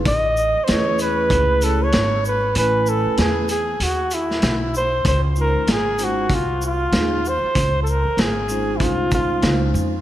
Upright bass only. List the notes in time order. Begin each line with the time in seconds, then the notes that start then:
0.06 A1
0.57 muted upright bass stroke
0.69 E2
1.31 C#2
1.94 G#1
2.56 A1
3.06 muted upright bass stroke
3.18 E2
3.80 D#2
4.43 B1
5.05 C#2
5.55 muted upright bass stroke
5.67 G#1
6.30 C2
6.92 D#2
7.43 muted upright bass stroke
7.56 C#2
8.05 muted upright bass stroke
8.17 G#1
8.80 C2
9.43 C#2
9.74 F2